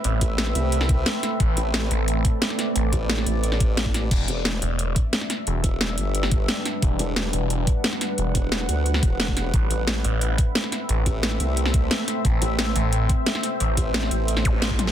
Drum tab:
CC |----------------|----------------|----------------|x---------------|
HH |x-x-x-x-x-x-x-x-|x-x-x-x-x-x-x-x-|x-x-x-x-x-x-x-x-|x-x-x-x-x-x-x-x-|
SD |----oo---o--o-o-|----o-------ooo-|----oo---o--o-o-|----o-------ooo-|
T1 |----------------|----------------|----------------|----------------|
BD |--o-------o-----|o---------o-----|--o-------o--o--|o---------o-----|

CC |----------------|----------------|----------------|----------------|
HH |x-x-x-x-x-x-x-x-|x-x-x-x-x-x-x-x-|x-x-x-x-x-x-x-x-|x-x-x-x-x-x-x-x-|
SD |----oo---o--o-o-|----o-------ooo-|----oo---o--o-o-|----o-------ooo-|
T1 |----------------|----------------|----------------|----------------|
BD |--o-------o-----|o---------o-----|--o-------o--o--|o---------o-----|

CC |----------------|----------------|----------------|
HH |x-x-x-x-x-x-x-x-|x-x-x-x-x-x-x-x-|x-x-x-x-x-x-x-x-|
SD |----oo---o--o-o-|----o-------ooo-|----oo---o--o-oo|
T1 |----------------|----------------|--------------o-|
BD |--o-------o-----|o---------o-----|--o-------o--o--|